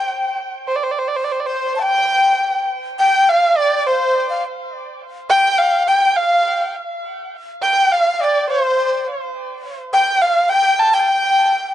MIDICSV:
0, 0, Header, 1, 3, 480
1, 0, Start_track
1, 0, Tempo, 578592
1, 557, Time_signature, 2, 2, 24, 8
1, 9743, End_track
2, 0, Start_track
2, 0, Title_t, "Dizi"
2, 0, Program_c, 0, 73
2, 0, Note_on_c, 0, 79, 91
2, 323, Note_off_c, 0, 79, 0
2, 1218, Note_on_c, 0, 72, 72
2, 1440, Note_off_c, 0, 72, 0
2, 1459, Note_on_c, 0, 81, 58
2, 1517, Note_on_c, 0, 79, 88
2, 1530, Note_off_c, 0, 81, 0
2, 2241, Note_off_c, 0, 79, 0
2, 2476, Note_on_c, 0, 79, 89
2, 2743, Note_on_c, 0, 77, 81
2, 2755, Note_off_c, 0, 79, 0
2, 2978, Note_off_c, 0, 77, 0
2, 2983, Note_on_c, 0, 74, 73
2, 3201, Note_off_c, 0, 74, 0
2, 3213, Note_on_c, 0, 72, 77
2, 3545, Note_off_c, 0, 72, 0
2, 3564, Note_on_c, 0, 77, 67
2, 3677, Note_off_c, 0, 77, 0
2, 4395, Note_on_c, 0, 79, 101
2, 4839, Note_off_c, 0, 79, 0
2, 4881, Note_on_c, 0, 79, 86
2, 5070, Note_off_c, 0, 79, 0
2, 5070, Note_on_c, 0, 79, 57
2, 5124, Note_on_c, 0, 77, 81
2, 5136, Note_off_c, 0, 79, 0
2, 5602, Note_off_c, 0, 77, 0
2, 6331, Note_on_c, 0, 79, 93
2, 6586, Note_on_c, 0, 77, 81
2, 6599, Note_off_c, 0, 79, 0
2, 6835, Note_on_c, 0, 74, 76
2, 6848, Note_off_c, 0, 77, 0
2, 7051, Note_on_c, 0, 72, 74
2, 7063, Note_off_c, 0, 74, 0
2, 7525, Note_off_c, 0, 72, 0
2, 8240, Note_on_c, 0, 79, 100
2, 8459, Note_off_c, 0, 79, 0
2, 8477, Note_on_c, 0, 77, 87
2, 8698, Note_off_c, 0, 77, 0
2, 8702, Note_on_c, 0, 79, 98
2, 9041, Note_off_c, 0, 79, 0
2, 9071, Note_on_c, 0, 79, 86
2, 9128, Note_on_c, 0, 81, 68
2, 9140, Note_off_c, 0, 79, 0
2, 9193, Note_on_c, 0, 79, 88
2, 9205, Note_off_c, 0, 81, 0
2, 9743, Note_off_c, 0, 79, 0
2, 9743, End_track
3, 0, Start_track
3, 0, Title_t, "Erhu"
3, 0, Program_c, 1, 110
3, 0, Note_on_c, 1, 79, 101
3, 320, Note_off_c, 1, 79, 0
3, 560, Note_on_c, 1, 72, 63
3, 629, Note_on_c, 1, 74, 64
3, 641, Note_off_c, 1, 72, 0
3, 691, Note_on_c, 1, 72, 63
3, 703, Note_off_c, 1, 74, 0
3, 754, Note_on_c, 1, 74, 61
3, 767, Note_off_c, 1, 72, 0
3, 818, Note_on_c, 1, 72, 64
3, 831, Note_off_c, 1, 74, 0
3, 896, Note_on_c, 1, 74, 67
3, 909, Note_off_c, 1, 72, 0
3, 961, Note_on_c, 1, 72, 64
3, 974, Note_off_c, 1, 74, 0
3, 1029, Note_on_c, 1, 74, 65
3, 1042, Note_off_c, 1, 72, 0
3, 1092, Note_on_c, 1, 72, 62
3, 1105, Note_off_c, 1, 74, 0
3, 1161, Note_on_c, 1, 74, 59
3, 1173, Note_off_c, 1, 72, 0
3, 1208, Note_on_c, 1, 72, 70
3, 1220, Note_off_c, 1, 74, 0
3, 1502, Note_off_c, 1, 72, 0
3, 1507, Note_on_c, 1, 79, 99
3, 2203, Note_off_c, 1, 79, 0
3, 2495, Note_on_c, 1, 79, 95
3, 2728, Note_on_c, 1, 77, 96
3, 2741, Note_off_c, 1, 79, 0
3, 2965, Note_on_c, 1, 74, 83
3, 2977, Note_off_c, 1, 77, 0
3, 3208, Note_on_c, 1, 72, 81
3, 3220, Note_off_c, 1, 74, 0
3, 3686, Note_off_c, 1, 72, 0
3, 4394, Note_on_c, 1, 79, 118
3, 4630, Note_on_c, 1, 77, 100
3, 4642, Note_off_c, 1, 79, 0
3, 4876, Note_on_c, 1, 79, 102
3, 4889, Note_off_c, 1, 77, 0
3, 5110, Note_on_c, 1, 77, 97
3, 5123, Note_off_c, 1, 79, 0
3, 5595, Note_off_c, 1, 77, 0
3, 6323, Note_on_c, 1, 79, 101
3, 6569, Note_on_c, 1, 77, 95
3, 6582, Note_off_c, 1, 79, 0
3, 6751, Note_off_c, 1, 77, 0
3, 6751, Note_on_c, 1, 77, 63
3, 6810, Note_on_c, 1, 74, 87
3, 6823, Note_off_c, 1, 77, 0
3, 7045, Note_off_c, 1, 74, 0
3, 7050, Note_on_c, 1, 72, 75
3, 7491, Note_off_c, 1, 72, 0
3, 8248, Note_on_c, 1, 79, 100
3, 8475, Note_on_c, 1, 77, 90
3, 8487, Note_off_c, 1, 79, 0
3, 8706, Note_on_c, 1, 79, 100
3, 8718, Note_off_c, 1, 77, 0
3, 8952, Note_on_c, 1, 81, 108
3, 8965, Note_off_c, 1, 79, 0
3, 9075, Note_on_c, 1, 79, 99
3, 9087, Note_off_c, 1, 81, 0
3, 9743, Note_off_c, 1, 79, 0
3, 9743, End_track
0, 0, End_of_file